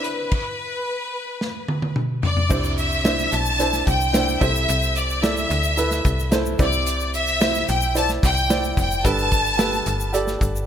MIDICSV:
0, 0, Header, 1, 5, 480
1, 0, Start_track
1, 0, Key_signature, 0, "major"
1, 0, Tempo, 545455
1, 284, Time_signature, 4, 2, 24, 8
1, 9383, End_track
2, 0, Start_track
2, 0, Title_t, "Violin section"
2, 0, Program_c, 0, 48
2, 37, Note_on_c, 0, 71, 71
2, 1721, Note_off_c, 0, 71, 0
2, 1968, Note_on_c, 0, 74, 71
2, 2413, Note_off_c, 0, 74, 0
2, 2454, Note_on_c, 0, 76, 84
2, 2930, Note_off_c, 0, 76, 0
2, 2941, Note_on_c, 0, 81, 96
2, 3413, Note_off_c, 0, 81, 0
2, 3420, Note_on_c, 0, 79, 94
2, 3859, Note_off_c, 0, 79, 0
2, 3901, Note_on_c, 0, 76, 87
2, 4373, Note_off_c, 0, 76, 0
2, 4373, Note_on_c, 0, 74, 77
2, 4608, Note_off_c, 0, 74, 0
2, 4610, Note_on_c, 0, 76, 80
2, 5567, Note_off_c, 0, 76, 0
2, 5816, Note_on_c, 0, 74, 76
2, 6256, Note_off_c, 0, 74, 0
2, 6290, Note_on_c, 0, 76, 87
2, 6733, Note_off_c, 0, 76, 0
2, 6773, Note_on_c, 0, 79, 83
2, 7008, Note_off_c, 0, 79, 0
2, 7011, Note_on_c, 0, 81, 98
2, 7117, Note_off_c, 0, 81, 0
2, 7254, Note_on_c, 0, 79, 98
2, 7695, Note_off_c, 0, 79, 0
2, 7737, Note_on_c, 0, 79, 84
2, 7954, Note_off_c, 0, 79, 0
2, 7967, Note_on_c, 0, 81, 101
2, 8924, Note_off_c, 0, 81, 0
2, 9383, End_track
3, 0, Start_track
3, 0, Title_t, "Upright piano"
3, 0, Program_c, 1, 0
3, 0, Control_c, 1, 64, 127
3, 0, Note_on_c, 1, 62, 59
3, 0, Note_on_c, 1, 64, 55
3, 0, Note_on_c, 1, 71, 64
3, 0, Note_on_c, 1, 72, 62
3, 193, Note_off_c, 1, 62, 0
3, 196, Note_off_c, 1, 64, 0
3, 198, Note_off_c, 1, 71, 0
3, 296, Control_c, 1, 64, 0
3, 298, Note_off_c, 1, 72, 0
3, 2193, Note_on_c, 1, 62, 61
3, 2198, Note_on_c, 1, 48, 56
3, 2199, Note_on_c, 1, 64, 55
3, 2206, Note_on_c, 1, 72, 70
3, 2374, Control_c, 1, 64, 127
3, 2590, Note_off_c, 1, 62, 0
3, 2593, Note_off_c, 1, 64, 0
3, 2597, Note_off_c, 1, 72, 0
3, 2676, Note_on_c, 1, 62, 65
3, 2680, Note_on_c, 1, 64, 59
3, 2688, Note_on_c, 1, 72, 69
3, 2886, Note_off_c, 1, 48, 0
3, 3071, Note_off_c, 1, 62, 0
3, 3074, Note_off_c, 1, 64, 0
3, 3077, Note_off_c, 1, 72, 0
3, 3157, Note_on_c, 1, 62, 61
3, 3164, Note_on_c, 1, 64, 58
3, 3168, Note_on_c, 1, 72, 68
3, 3552, Note_off_c, 1, 62, 0
3, 3556, Note_off_c, 1, 64, 0
3, 3557, Note_off_c, 1, 72, 0
3, 3634, Note_on_c, 1, 62, 64
3, 3640, Note_on_c, 1, 64, 59
3, 3646, Note_on_c, 1, 72, 71
3, 3861, Note_off_c, 1, 64, 0
3, 3872, Note_off_c, 1, 72, 0
3, 3874, Note_on_c, 1, 64, 67
3, 3878, Note_on_c, 1, 69, 60
3, 3879, Note_off_c, 1, 62, 0
3, 3879, Note_on_c, 1, 48, 55
3, 3885, Note_on_c, 1, 72, 74
3, 3898, Control_c, 1, 64, 0
3, 4045, Control_c, 1, 64, 127
3, 4466, Note_off_c, 1, 64, 0
3, 4467, Note_off_c, 1, 69, 0
3, 4471, Note_off_c, 1, 72, 0
3, 4566, Note_off_c, 1, 48, 0
3, 4594, Note_on_c, 1, 64, 64
3, 4601, Note_on_c, 1, 69, 56
3, 4606, Note_on_c, 1, 74, 71
3, 4990, Note_off_c, 1, 64, 0
3, 4993, Note_off_c, 1, 69, 0
3, 4996, Note_off_c, 1, 74, 0
3, 5076, Note_on_c, 1, 64, 65
3, 5081, Note_on_c, 1, 69, 63
3, 5091, Note_on_c, 1, 71, 72
3, 5471, Note_off_c, 1, 64, 0
3, 5474, Note_off_c, 1, 69, 0
3, 5478, Note_off_c, 1, 71, 0
3, 5554, Note_on_c, 1, 64, 74
3, 5562, Note_on_c, 1, 69, 67
3, 5567, Note_on_c, 1, 72, 77
3, 5782, Note_off_c, 1, 64, 0
3, 5793, Note_off_c, 1, 72, 0
3, 5796, Note_on_c, 1, 64, 67
3, 5803, Note_off_c, 1, 69, 0
3, 5805, Note_on_c, 1, 48, 57
3, 5806, Note_on_c, 1, 72, 62
3, 5812, Note_on_c, 1, 74, 76
3, 5814, Control_c, 1, 64, 0
3, 5979, Control_c, 1, 64, 127
3, 6386, Note_off_c, 1, 64, 0
3, 6391, Note_off_c, 1, 72, 0
3, 6394, Note_off_c, 1, 74, 0
3, 6489, Note_off_c, 1, 48, 0
3, 6516, Note_on_c, 1, 64, 62
3, 6521, Note_on_c, 1, 72, 61
3, 6531, Note_on_c, 1, 76, 76
3, 6910, Note_off_c, 1, 64, 0
3, 6913, Note_off_c, 1, 72, 0
3, 6918, Note_off_c, 1, 76, 0
3, 6994, Note_on_c, 1, 64, 67
3, 6999, Note_on_c, 1, 72, 60
3, 7004, Note_on_c, 1, 74, 67
3, 7389, Note_off_c, 1, 64, 0
3, 7392, Note_off_c, 1, 72, 0
3, 7394, Note_off_c, 1, 74, 0
3, 7476, Note_on_c, 1, 64, 63
3, 7482, Note_on_c, 1, 72, 63
3, 7487, Note_on_c, 1, 74, 70
3, 7870, Note_off_c, 1, 64, 0
3, 7873, Note_off_c, 1, 72, 0
3, 7876, Note_off_c, 1, 74, 0
3, 7953, Note_on_c, 1, 67, 61
3, 7959, Note_on_c, 1, 69, 64
3, 7960, Note_on_c, 1, 43, 60
3, 7965, Note_on_c, 1, 71, 71
3, 7975, Control_c, 1, 64, 0
3, 8107, Control_c, 1, 64, 127
3, 8348, Note_off_c, 1, 67, 0
3, 8351, Note_off_c, 1, 69, 0
3, 8354, Note_off_c, 1, 71, 0
3, 8431, Note_on_c, 1, 67, 65
3, 8439, Note_on_c, 1, 69, 58
3, 8444, Note_on_c, 1, 71, 72
3, 8645, Note_off_c, 1, 43, 0
3, 8827, Note_off_c, 1, 67, 0
3, 8831, Note_off_c, 1, 69, 0
3, 8834, Note_off_c, 1, 71, 0
3, 8911, Note_on_c, 1, 67, 74
3, 8919, Note_on_c, 1, 69, 66
3, 8921, Note_on_c, 1, 74, 82
3, 9307, Note_off_c, 1, 67, 0
3, 9311, Note_off_c, 1, 69, 0
3, 9312, Note_off_c, 1, 74, 0
3, 9383, End_track
4, 0, Start_track
4, 0, Title_t, "FM bass"
4, 0, Program_c, 2, 39
4, 2205, Note_on_c, 2, 36, 102
4, 2890, Note_off_c, 2, 36, 0
4, 2928, Note_on_c, 2, 35, 87
4, 3373, Note_off_c, 2, 35, 0
4, 3405, Note_on_c, 2, 36, 94
4, 3851, Note_off_c, 2, 36, 0
4, 3885, Note_on_c, 2, 36, 100
4, 4108, Note_off_c, 2, 36, 0
4, 4127, Note_on_c, 2, 36, 98
4, 4810, Note_off_c, 2, 36, 0
4, 4844, Note_on_c, 2, 38, 90
4, 5290, Note_off_c, 2, 38, 0
4, 5324, Note_on_c, 2, 36, 89
4, 5770, Note_off_c, 2, 36, 0
4, 5801, Note_on_c, 2, 36, 91
4, 6727, Note_off_c, 2, 36, 0
4, 6766, Note_on_c, 2, 35, 91
4, 7211, Note_off_c, 2, 35, 0
4, 7245, Note_on_c, 2, 36, 92
4, 7690, Note_off_c, 2, 36, 0
4, 7721, Note_on_c, 2, 29, 92
4, 7945, Note_off_c, 2, 29, 0
4, 7960, Note_on_c, 2, 31, 102
4, 8645, Note_off_c, 2, 31, 0
4, 8681, Note_on_c, 2, 31, 94
4, 9127, Note_off_c, 2, 31, 0
4, 9160, Note_on_c, 2, 31, 96
4, 9383, Note_off_c, 2, 31, 0
4, 9383, End_track
5, 0, Start_track
5, 0, Title_t, "Drums"
5, 38, Note_on_c, 9, 42, 55
5, 126, Note_off_c, 9, 42, 0
5, 277, Note_on_c, 9, 49, 69
5, 280, Note_on_c, 9, 36, 87
5, 365, Note_off_c, 9, 49, 0
5, 368, Note_off_c, 9, 36, 0
5, 1242, Note_on_c, 9, 38, 49
5, 1330, Note_off_c, 9, 38, 0
5, 1482, Note_on_c, 9, 48, 57
5, 1570, Note_off_c, 9, 48, 0
5, 1605, Note_on_c, 9, 48, 55
5, 1693, Note_off_c, 9, 48, 0
5, 1723, Note_on_c, 9, 47, 67
5, 1811, Note_off_c, 9, 47, 0
5, 1964, Note_on_c, 9, 43, 86
5, 2052, Note_off_c, 9, 43, 0
5, 2084, Note_on_c, 9, 43, 70
5, 2172, Note_off_c, 9, 43, 0
5, 2204, Note_on_c, 9, 36, 100
5, 2205, Note_on_c, 9, 49, 79
5, 2205, Note_on_c, 9, 82, 60
5, 2292, Note_off_c, 9, 36, 0
5, 2293, Note_off_c, 9, 49, 0
5, 2293, Note_off_c, 9, 82, 0
5, 2322, Note_on_c, 9, 82, 46
5, 2410, Note_off_c, 9, 82, 0
5, 2445, Note_on_c, 9, 42, 51
5, 2449, Note_on_c, 9, 82, 45
5, 2533, Note_off_c, 9, 42, 0
5, 2537, Note_off_c, 9, 82, 0
5, 2568, Note_on_c, 9, 82, 39
5, 2656, Note_off_c, 9, 82, 0
5, 2684, Note_on_c, 9, 38, 105
5, 2685, Note_on_c, 9, 42, 67
5, 2686, Note_on_c, 9, 82, 54
5, 2772, Note_off_c, 9, 38, 0
5, 2773, Note_off_c, 9, 42, 0
5, 2774, Note_off_c, 9, 82, 0
5, 2806, Note_on_c, 9, 82, 37
5, 2894, Note_off_c, 9, 82, 0
5, 2923, Note_on_c, 9, 42, 69
5, 2923, Note_on_c, 9, 82, 40
5, 3011, Note_off_c, 9, 42, 0
5, 3011, Note_off_c, 9, 82, 0
5, 3042, Note_on_c, 9, 82, 49
5, 3130, Note_off_c, 9, 82, 0
5, 3165, Note_on_c, 9, 82, 66
5, 3169, Note_on_c, 9, 42, 74
5, 3253, Note_off_c, 9, 82, 0
5, 3257, Note_off_c, 9, 42, 0
5, 3282, Note_on_c, 9, 38, 31
5, 3285, Note_on_c, 9, 82, 50
5, 3370, Note_off_c, 9, 38, 0
5, 3373, Note_off_c, 9, 82, 0
5, 3405, Note_on_c, 9, 42, 59
5, 3406, Note_on_c, 9, 36, 84
5, 3413, Note_on_c, 9, 82, 42
5, 3493, Note_off_c, 9, 42, 0
5, 3494, Note_off_c, 9, 36, 0
5, 3501, Note_off_c, 9, 82, 0
5, 3528, Note_on_c, 9, 82, 46
5, 3616, Note_off_c, 9, 82, 0
5, 3643, Note_on_c, 9, 42, 78
5, 3645, Note_on_c, 9, 38, 90
5, 3647, Note_on_c, 9, 82, 65
5, 3731, Note_off_c, 9, 42, 0
5, 3733, Note_off_c, 9, 38, 0
5, 3735, Note_off_c, 9, 82, 0
5, 3769, Note_on_c, 9, 82, 44
5, 3857, Note_off_c, 9, 82, 0
5, 3883, Note_on_c, 9, 42, 63
5, 3884, Note_on_c, 9, 36, 95
5, 3891, Note_on_c, 9, 82, 47
5, 3971, Note_off_c, 9, 42, 0
5, 3972, Note_off_c, 9, 36, 0
5, 3979, Note_off_c, 9, 82, 0
5, 4010, Note_on_c, 9, 82, 50
5, 4098, Note_off_c, 9, 82, 0
5, 4124, Note_on_c, 9, 42, 89
5, 4132, Note_on_c, 9, 82, 65
5, 4212, Note_off_c, 9, 42, 0
5, 4220, Note_off_c, 9, 82, 0
5, 4245, Note_on_c, 9, 82, 52
5, 4333, Note_off_c, 9, 82, 0
5, 4361, Note_on_c, 9, 42, 51
5, 4369, Note_on_c, 9, 82, 49
5, 4449, Note_off_c, 9, 42, 0
5, 4457, Note_off_c, 9, 82, 0
5, 4487, Note_on_c, 9, 82, 36
5, 4575, Note_off_c, 9, 82, 0
5, 4607, Note_on_c, 9, 38, 95
5, 4607, Note_on_c, 9, 82, 60
5, 4608, Note_on_c, 9, 42, 75
5, 4695, Note_off_c, 9, 38, 0
5, 4695, Note_off_c, 9, 82, 0
5, 4696, Note_off_c, 9, 42, 0
5, 4727, Note_on_c, 9, 82, 44
5, 4815, Note_off_c, 9, 82, 0
5, 4844, Note_on_c, 9, 42, 68
5, 4847, Note_on_c, 9, 82, 44
5, 4932, Note_off_c, 9, 42, 0
5, 4935, Note_off_c, 9, 82, 0
5, 4959, Note_on_c, 9, 82, 50
5, 5047, Note_off_c, 9, 82, 0
5, 5082, Note_on_c, 9, 82, 68
5, 5088, Note_on_c, 9, 42, 70
5, 5170, Note_off_c, 9, 82, 0
5, 5176, Note_off_c, 9, 42, 0
5, 5201, Note_on_c, 9, 38, 32
5, 5205, Note_on_c, 9, 82, 50
5, 5289, Note_off_c, 9, 38, 0
5, 5293, Note_off_c, 9, 82, 0
5, 5321, Note_on_c, 9, 42, 65
5, 5324, Note_on_c, 9, 36, 90
5, 5330, Note_on_c, 9, 82, 43
5, 5409, Note_off_c, 9, 42, 0
5, 5412, Note_off_c, 9, 36, 0
5, 5418, Note_off_c, 9, 82, 0
5, 5451, Note_on_c, 9, 82, 42
5, 5539, Note_off_c, 9, 82, 0
5, 5559, Note_on_c, 9, 42, 72
5, 5561, Note_on_c, 9, 38, 85
5, 5564, Note_on_c, 9, 82, 61
5, 5647, Note_off_c, 9, 42, 0
5, 5649, Note_off_c, 9, 38, 0
5, 5652, Note_off_c, 9, 82, 0
5, 5684, Note_on_c, 9, 82, 50
5, 5772, Note_off_c, 9, 82, 0
5, 5799, Note_on_c, 9, 42, 62
5, 5801, Note_on_c, 9, 36, 96
5, 5801, Note_on_c, 9, 82, 47
5, 5887, Note_off_c, 9, 42, 0
5, 5889, Note_off_c, 9, 36, 0
5, 5889, Note_off_c, 9, 82, 0
5, 5918, Note_on_c, 9, 82, 52
5, 6006, Note_off_c, 9, 82, 0
5, 6041, Note_on_c, 9, 42, 90
5, 6044, Note_on_c, 9, 82, 61
5, 6129, Note_off_c, 9, 42, 0
5, 6132, Note_off_c, 9, 82, 0
5, 6163, Note_on_c, 9, 82, 49
5, 6251, Note_off_c, 9, 82, 0
5, 6282, Note_on_c, 9, 42, 55
5, 6284, Note_on_c, 9, 82, 48
5, 6370, Note_off_c, 9, 42, 0
5, 6372, Note_off_c, 9, 82, 0
5, 6399, Note_on_c, 9, 82, 36
5, 6487, Note_off_c, 9, 82, 0
5, 6519, Note_on_c, 9, 82, 64
5, 6525, Note_on_c, 9, 38, 103
5, 6526, Note_on_c, 9, 42, 66
5, 6607, Note_off_c, 9, 82, 0
5, 6613, Note_off_c, 9, 38, 0
5, 6614, Note_off_c, 9, 42, 0
5, 6640, Note_on_c, 9, 82, 45
5, 6728, Note_off_c, 9, 82, 0
5, 6761, Note_on_c, 9, 82, 42
5, 6763, Note_on_c, 9, 42, 69
5, 6849, Note_off_c, 9, 82, 0
5, 6851, Note_off_c, 9, 42, 0
5, 6876, Note_on_c, 9, 82, 50
5, 6964, Note_off_c, 9, 82, 0
5, 7001, Note_on_c, 9, 82, 65
5, 7010, Note_on_c, 9, 42, 78
5, 7089, Note_off_c, 9, 82, 0
5, 7098, Note_off_c, 9, 42, 0
5, 7119, Note_on_c, 9, 82, 48
5, 7123, Note_on_c, 9, 38, 31
5, 7207, Note_off_c, 9, 82, 0
5, 7211, Note_off_c, 9, 38, 0
5, 7244, Note_on_c, 9, 36, 92
5, 7245, Note_on_c, 9, 42, 62
5, 7248, Note_on_c, 9, 82, 47
5, 7332, Note_off_c, 9, 36, 0
5, 7333, Note_off_c, 9, 42, 0
5, 7336, Note_off_c, 9, 82, 0
5, 7366, Note_on_c, 9, 82, 45
5, 7454, Note_off_c, 9, 82, 0
5, 7482, Note_on_c, 9, 42, 75
5, 7483, Note_on_c, 9, 82, 64
5, 7484, Note_on_c, 9, 38, 88
5, 7570, Note_off_c, 9, 42, 0
5, 7571, Note_off_c, 9, 82, 0
5, 7572, Note_off_c, 9, 38, 0
5, 7604, Note_on_c, 9, 82, 49
5, 7692, Note_off_c, 9, 82, 0
5, 7719, Note_on_c, 9, 36, 85
5, 7720, Note_on_c, 9, 42, 64
5, 7724, Note_on_c, 9, 82, 51
5, 7807, Note_off_c, 9, 36, 0
5, 7808, Note_off_c, 9, 42, 0
5, 7812, Note_off_c, 9, 82, 0
5, 7844, Note_on_c, 9, 82, 53
5, 7932, Note_off_c, 9, 82, 0
5, 7962, Note_on_c, 9, 36, 100
5, 7963, Note_on_c, 9, 42, 88
5, 7967, Note_on_c, 9, 82, 58
5, 8050, Note_off_c, 9, 36, 0
5, 8051, Note_off_c, 9, 42, 0
5, 8055, Note_off_c, 9, 82, 0
5, 8083, Note_on_c, 9, 82, 48
5, 8171, Note_off_c, 9, 82, 0
5, 8198, Note_on_c, 9, 42, 57
5, 8201, Note_on_c, 9, 36, 82
5, 8205, Note_on_c, 9, 82, 49
5, 8286, Note_off_c, 9, 42, 0
5, 8289, Note_off_c, 9, 36, 0
5, 8293, Note_off_c, 9, 82, 0
5, 8327, Note_on_c, 9, 82, 36
5, 8415, Note_off_c, 9, 82, 0
5, 8439, Note_on_c, 9, 38, 107
5, 8439, Note_on_c, 9, 42, 70
5, 8441, Note_on_c, 9, 82, 56
5, 8527, Note_off_c, 9, 38, 0
5, 8527, Note_off_c, 9, 42, 0
5, 8529, Note_off_c, 9, 82, 0
5, 8569, Note_on_c, 9, 82, 41
5, 8657, Note_off_c, 9, 82, 0
5, 8678, Note_on_c, 9, 42, 67
5, 8685, Note_on_c, 9, 82, 46
5, 8766, Note_off_c, 9, 42, 0
5, 8773, Note_off_c, 9, 82, 0
5, 8801, Note_on_c, 9, 82, 51
5, 8889, Note_off_c, 9, 82, 0
5, 8922, Note_on_c, 9, 82, 66
5, 8925, Note_on_c, 9, 42, 76
5, 9010, Note_off_c, 9, 82, 0
5, 9013, Note_off_c, 9, 42, 0
5, 9038, Note_on_c, 9, 38, 32
5, 9045, Note_on_c, 9, 82, 46
5, 9126, Note_off_c, 9, 38, 0
5, 9133, Note_off_c, 9, 82, 0
5, 9161, Note_on_c, 9, 42, 67
5, 9162, Note_on_c, 9, 36, 88
5, 9171, Note_on_c, 9, 82, 44
5, 9249, Note_off_c, 9, 42, 0
5, 9250, Note_off_c, 9, 36, 0
5, 9259, Note_off_c, 9, 82, 0
5, 9291, Note_on_c, 9, 82, 42
5, 9379, Note_off_c, 9, 82, 0
5, 9383, End_track
0, 0, End_of_file